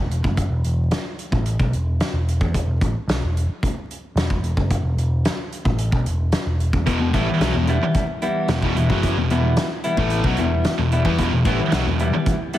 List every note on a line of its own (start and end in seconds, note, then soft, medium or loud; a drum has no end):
0.09 0.23 E1 medium
0.09 closed hi-hat medium
0.24 0.50 F#1 medium
0.24 kick loud
0.37 kick medium
0.37 closed hi-hat medium
0.50 0.64 E1 medium
0.64 0.91 E1 medium
0.64 closed hi-hat medium
0.91 snare loud
0.91 closed hi-hat loud
1.19 closed hi-hat medium
1.32 1.58 A1 medium
1.32 kick loud
1.46 closed hi-hat medium
1.59 1.73 B1 medium
1.59 kick loud
1.73 1.99 E1 medium
1.73 closed hi-hat medium
2.00 snare loud
2.00 closed hi-hat medium
2.13 2.39 E1 medium
2.28 closed hi-hat medium
2.41 2.54 E2 medium
2.41 kick loud
2.54 2.67 E1 medium
2.54 kick medium
2.54 closed hi-hat medium
2.67 2.80 E1 medium
2.81 2.94 A1 medium
2.81 kick loud
2.81 closed hi-hat medium
2.95 muted picked electric bass stroke soft
3.08 3.21 B1 medium
3.08 snare loud
3.08 closed hi-hat medium
3.22 3.47 E1 medium
3.37 closed hi-hat medium
3.49 muted picked electric bass stroke soft
3.63 kick loud
3.63 closed hi-hat medium
3.91 closed hi-hat medium
4.16 4.29 E1 medium
4.16 snare loud
4.16 closed hi-hat medium
4.30 4.41 E1 medium
4.30 kick loud
4.42 4.55 E1 medium
4.42 closed hi-hat medium
4.57 4.82 F#1 medium
4.57 kick loud
4.70 kick medium
4.70 closed hi-hat medium
4.83 4.96 E1 medium
4.97 5.23 E1 medium
4.97 closed hi-hat medium
5.25 snare loud
5.25 closed hi-hat loud
5.52 closed hi-hat medium
5.65 5.90 A1 medium
5.65 kick loud
5.78 closed hi-hat loud
5.92 6.05 B1 medium
5.92 kick loud
6.06 6.32 E1 medium
6.06 closed hi-hat medium
6.32 snare loud
6.32 closed hi-hat medium
6.46 6.72 E1 medium
6.60 closed hi-hat medium
6.73 6.86 E2 medium
6.73 kick loud
6.86 6.99 E1 medium
6.86 6.99 E2 loud
6.86 6.99 B2 medium
6.86 kick medium
6.86 closed hi-hat medium
7.00 7.13 E1 medium
7.00 7.14 E2 medium
7.00 7.13 B2 medium
7.13 7.27 A1 medium
7.13 7.26 A2 medium
7.13 7.27 E3 loud
7.13 7.50 E3 medium
7.13 7.50 G3 medium
7.13 7.50 B3 medium
7.13 7.49 E4 medium
7.13 kick loud
7.13 closed hi-hat medium
7.28 muted picked electric bass stroke soft
7.28 muted distorted electric guitar stroke medium
7.40 7.53 B1 medium
7.40 7.54 B2 medium
7.40 7.55 F#3 loud
7.40 snare loud
7.40 closed hi-hat medium
7.54 7.79 E1 medium
7.54 7.76 E2 medium
7.54 7.76 B2 medium
7.67 8.04 E3 medium
7.67 8.04 G3 medium
7.67 8.04 B3 medium
7.67 8.03 E4 medium
7.67 closed hi-hat medium
7.81 muted picked electric bass stroke soft
7.81 muted distorted electric guitar stroke medium
7.94 kick loud
7.94 closed hi-hat medium
8.22 8.58 E3 medium
8.22 8.58 G3 medium
8.22 8.57 B3 medium
8.22 8.57 E4 medium
8.22 closed hi-hat medium
8.48 8.61 E1 medium
8.48 8.61 E2 medium
8.48 8.62 B2 medium
8.48 snare loud
8.48 closed hi-hat medium
8.62 8.75 E1 loud
8.62 8.74 E2 medium
8.62 8.75 B2 medium
8.62 kick loud
8.75 8.88 E1 medium
8.75 8.89 E2 medium
8.75 8.89 B2 medium
8.75 9.12 E3 medium
8.75 9.12 G3 medium
8.75 9.11 B3 medium
8.75 9.11 E4 medium
8.75 closed hi-hat medium
8.89 9.15 F#1 medium
8.89 9.15 F#2 medium
8.89 9.16 C#3 medium
8.89 9.16 F#3 loud
8.89 kick loud
9.03 kick loud
9.03 closed hi-hat loud
9.17 9.29 E1 medium
9.17 9.30 E2 medium
9.17 9.30 B2 medium
9.30 9.55 E1 medium
9.30 9.52 E2 medium
9.30 9.52 B2 medium
9.30 9.66 E3 medium
9.30 9.65 G3 medium
9.30 9.66 B3 medium
9.30 9.65 E4 medium
9.30 closed hi-hat medium
9.56 snare loud
9.56 closed hi-hat medium
9.84 10.20 E3 medium
9.84 10.20 G3 medium
9.84 10.19 B3 medium
9.84 10.19 E4 medium
9.84 closed hi-hat medium
9.97 10.22 A1 medium
9.97 10.24 A2 medium
9.97 10.24 E3 medium
9.97 10.25 A3 loud
9.97 kick loud
10.10 closed hi-hat loud
10.24 10.37 B1 medium
10.24 10.37 B2 loud
10.24 10.38 F#3 loud
10.24 kick loud
10.37 10.63 E1 medium
10.37 10.60 E2 medium
10.37 10.60 B2 medium
10.37 10.74 E3 medium
10.37 10.74 G3 medium
10.37 10.73 B3 medium
10.37 10.73 E4 medium
10.37 closed hi-hat medium
10.64 snare loud
10.64 closed hi-hat medium
10.78 11.04 E1 medium
10.78 11.00 E2 medium
10.78 11.00 B2 medium
10.91 11.28 E3 medium
10.91 11.28 G3 medium
10.91 11.27 B3 medium
10.91 11.27 E4 medium
10.91 closed hi-hat medium
11.05 11.18 E2 medium
11.05 11.18 E3 medium
11.05 11.18 B3 loud
11.05 kick loud
11.18 11.31 E1 medium
11.18 11.31 E2 medium
11.18 11.31 B2 loud
11.18 kick loud
11.18 closed hi-hat medium
11.32 11.44 E1 medium
11.32 11.46 E2 medium
11.32 11.44 B2 medium
11.45 11.58 A1 medium
11.45 11.58 A2 medium
11.45 11.59 E3 loud
11.45 11.82 E3 medium
11.45 11.81 G3 medium
11.45 11.81 B3 medium
11.45 11.81 E4 medium
11.45 kick loud
11.45 closed hi-hat medium
11.59 muted distorted electric guitar stroke medium
11.59 muted picked electric bass stroke soft
11.72 11.85 B1 medium
11.72 11.85 B2 medium
11.72 11.86 F#3 loud
11.72 snare loud
11.72 closed hi-hat medium
11.86 12.11 E1 medium
11.86 12.08 E2 medium
11.86 12.08 B2 medium
11.99 12.36 E3 medium
11.99 12.35 G3 medium
11.99 12.35 B3 medium
11.99 12.35 E4 medium
11.99 closed hi-hat medium
12.13 muted distorted electric guitar stroke medium
12.13 muted picked electric bass stroke soft
12.26 kick loud
12.26 closed hi-hat medium
12.53 12.58 E3 medium
12.53 12.58 G3 medium
12.53 12.58 B3 medium
12.53 12.58 E4 medium
12.53 closed hi-hat medium